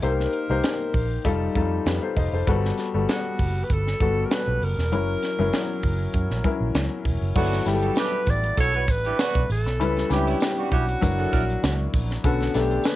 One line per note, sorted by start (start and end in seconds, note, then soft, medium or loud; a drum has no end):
0.02 0.26 C2 loud
0.02 0.44 A#3 medium
0.02 0.44 D#4 medium
0.02 0.44 G4 medium
0.02 1.22 A#4 medium
0.02 0.44 C5 medium
0.02 closed hi-hat medium
0.20 snare soft
0.33 closed hi-hat medium
0.49 0.60 C2 medium
0.49 1.25 A#3 medium
0.49 1.23 D#4 medium
0.49 1.25 G4 medium
0.49 1.25 C5 medium
0.64 snare loud
0.64 closed hi-hat medium
0.94 1.17 A#1 medium
0.94 kick medium
0.94 open hi-hat medium
1.25 1.47 F1 medium
1.25 1.52 G3 medium
1.25 1.52 D#4 medium
1.25 1.52 F4 medium
1.25 1.53 A4 loud
1.25 kick medium
1.25 closed hi-hat medium
1.55 1.78 F2 medium
1.55 2.37 G3 medium
1.55 2.37 D#4 medium
1.55 2.37 F4 medium
1.55 1.87 A4 medium
1.55 kick medium
1.55 closed hi-hat medium
1.86 1.98 F2 loud
1.86 2.02 G4 medium
1.86 2.02 B4 medium
1.86 snare loud
1.86 closed hi-hat medium
2.03 2.16 A4 soft
2.03 2.16 C5 medium
2.17 2.29 F1 medium
2.17 2.32 C5 medium
2.17 2.32 D#5 medium
2.17 kick medium
2.17 open hi-hat medium
2.33 2.44 F1 medium
2.33 2.47 A4 medium
2.33 2.62 C5 medium
2.47 2.70 G1 loud
2.47 2.88 G3 medium
2.47 2.89 B3 medium
2.47 2.89 F#4 medium
2.47 2.89 A4 medium
2.47 kick loud
2.47 closed hi-hat medium
2.65 snare soft
2.78 snare soft
2.78 closed hi-hat medium
2.94 3.05 G1 medium
2.94 3.88 G3 medium
2.94 3.88 B3 medium
2.94 3.88 F#4 medium
2.94 3.88 A4 medium
3.09 3.65 F#4 medium
3.09 snare loud
3.09 closed hi-hat medium
3.39 3.62 F#1 medium
3.39 kick medium
3.39 open hi-hat medium
3.64 3.73 B4 medium
3.70 3.93 G1 medium
3.70 4.27 A4 loud
3.70 kick medium
3.70 closed hi-hat medium
3.87 snare soft
4.00 4.23 G1 medium
4.00 4.82 G3 medium
4.00 4.82 B3 medium
4.00 4.82 F#4 medium
4.00 4.82 A4 medium
4.00 kick medium
4.00 closed hi-hat medium
4.25 4.35 A#4 medium
4.31 4.65 B4 medium
4.31 snare loud
4.31 closed hi-hat medium
4.47 4.58 B1 medium
4.61 4.74 F#1 medium
4.61 6.76 A#4 loud
4.61 open hi-hat medium
4.78 4.92 E1 medium
4.78 snare soft
4.92 5.15 F#1 loud
4.92 5.33 F#3 medium
4.92 5.33 C#4 medium
4.92 5.33 E4 medium
4.92 5.34 A#4 medium
4.92 closed hi-hat medium
5.23 snare soft
5.23 closed hi-hat medium
5.39 5.49 F#1 medium
5.39 6.32 F#3 medium
5.39 6.33 C#4 medium
5.39 6.33 E4 medium
5.39 6.33 A#4 medium
5.53 snare loud
5.53 closed hi-hat medium
5.83 6.06 F#1 medium
5.83 kick medium
5.83 open hi-hat medium
6.14 6.26 F#2 loud
6.14 kick medium
6.14 closed hi-hat medium
6.30 6.41 A#1 medium
6.30 snare soft
6.44 7.26 F#3 medium
6.44 7.26 C#4 medium
6.44 7.26 E4 medium
6.44 7.26 A#4 medium
6.44 kick medium
6.44 closed hi-hat medium
6.60 6.71 A#1 medium
6.75 6.87 C#2 medium
6.75 snare loud
6.75 closed hi-hat medium
7.05 7.17 E1 medium
7.05 kick medium
7.05 open hi-hat medium
7.21 7.32 F#1 medium
7.36 7.59 G1 loud
7.36 7.63 F#3 medium
7.36 7.63 B3 medium
7.36 7.61 B3 loud
7.36 7.60 D4 loud
7.36 7.63 E4 medium
7.36 7.61 F#4 loud
7.36 7.69 F#4 medium
7.36 7.64 A4 medium
7.36 kick loud
7.36 crash medium
7.52 snare soft
7.52 closed hi-hat soft
7.66 7.89 G1 medium
7.66 8.75 G3 medium
7.66 8.75 B3 medium
7.66 8.75 E4 medium
7.66 7.74 G4 medium
7.66 8.00 G4 medium
7.66 snare soft
7.66 closed hi-hat medium
7.66 tambourine medium
7.73 8.78 A4 medium
7.83 7.94 E4 medium
7.83 7.94 F#4 medium
7.83 7.94 A4 medium
7.83 closed hi-hat medium
7.95 8.22 D4 medium
7.95 8.22 E4 loud
7.95 8.22 G4 loud
7.95 8.31 B4 loud
7.95 snare loud
7.95 tambourine medium
8.26 8.50 A1 medium
8.26 8.59 D5 loud
8.26 kick medium
8.26 closed hi-hat medium
8.26 tambourine soft
8.44 closed hi-hat soft
8.57 8.88 B1 medium
8.57 8.71 E4 medium
8.57 8.71 F#4 medium
8.57 8.71 A4 loud
8.57 8.92 C#5 loud
8.57 kick medium
8.57 closed hi-hat loud
8.57 tambourine soft
8.73 8.86 E4 medium
8.73 8.86 F#4 medium
8.73 8.86 B4 medium
8.73 closed hi-hat soft
8.88 9.11 A1 medium
8.88 9.51 B4 loud
8.88 kick medium
8.88 closed hi-hat medium
8.88 tambourine medium
9.05 9.17 D4 medium
9.05 9.17 E4 medium
9.05 9.17 G4 loud
9.05 closed hi-hat medium
9.19 9.44 B3 medium
9.19 9.44 D4 medium
9.19 9.44 F#4 loud
9.19 snare loud
9.19 tambourine medium
9.35 9.46 B1 medium
9.35 kick medium
9.49 9.66 A1 medium
9.49 10.14 A4 medium
9.49 open hi-hat medium
9.49 tambourine soft
9.66 9.79 B1 medium
9.66 snare soft
9.66 closed hi-hat soft
9.79 10.02 C#2 loud
9.79 10.07 G3 medium
9.79 10.07 C#4 medium
9.79 10.07 E4 medium
9.79 10.08 B4 medium
9.79 closed hi-hat loud
9.79 tambourine soft
9.97 snare soft
9.97 closed hi-hat soft
10.09 10.33 C#2 medium
10.09 11.01 G3 medium
10.09 11.02 C#4 medium
10.09 10.24 C#4 medium
10.09 10.18 D4 soft
10.09 10.24 E4 medium
10.09 10.24 G4 medium
10.09 10.72 G4 medium
10.09 11.02 B4 medium
10.09 snare soft
10.09 closed hi-hat medium
10.09 tambourine soft
10.17 11.00 E4 medium
10.27 10.39 B3 medium
10.27 10.38 C#4 medium
10.27 10.38 E4 medium
10.27 closed hi-hat medium
10.40 snare loud
10.40 tambourine medium
10.58 10.69 B3 medium
10.58 10.69 D4 medium
10.58 10.69 F#4 medium
10.58 closed hi-hat soft
10.71 10.94 B1 medium
10.71 10.85 C#4 medium
10.71 10.85 E4 medium
10.71 11.90 F#4 medium
10.71 10.85 G4 medium
10.71 kick medium
10.71 closed hi-hat medium
10.89 closed hi-hat medium
11.01 11.25 F#1 medium
11.01 12.10 F#3 medium
11.01 12.10 D4 medium
11.01 12.10 E4 medium
11.01 12.11 A#4 medium
11.01 kick medium
11.01 closed hi-hat medium
11.01 tambourine soft
11.18 11.30 D4 medium
11.18 11.30 F#4 medium
11.18 11.30 A4 medium
11.18 closed hi-hat soft
11.32 11.55 A#1 medium
11.32 11.43 D4 medium
11.32 11.42 E4 medium
11.32 11.43 A#4 medium
11.32 kick medium
11.32 closed hi-hat medium
11.32 tambourine soft
11.50 closed hi-hat medium
11.63 11.86 C#2 medium
11.63 snare loud
11.63 tambourine medium
11.94 12.16 A#1 medium
11.94 kick medium
11.94 open hi-hat medium
11.94 tambourine soft
12.11 snare soft
12.11 closed hi-hat soft
12.24 12.47 B1 loud
12.24 12.51 D3 medium
12.24 12.51 B3 medium
12.24 12.52 C#4 medium
12.24 12.58 F#4 medium
12.24 12.52 A4 medium
12.24 kick loud
12.24 closed hi-hat medium
12.24 tambourine soft
12.41 snare soft
12.41 closed hi-hat soft
12.54 12.77 B1 medium
12.54 12.96 A3 medium
12.54 12.96 B3 medium
12.54 12.96 D4 medium
12.54 12.88 G4 medium
12.54 12.96 A4 medium
12.54 snare soft
12.54 closed hi-hat medium
12.54 tambourine soft
12.71 closed hi-hat medium
12.84 12.96 B4 medium
12.84 snare loud
12.84 tambourine medium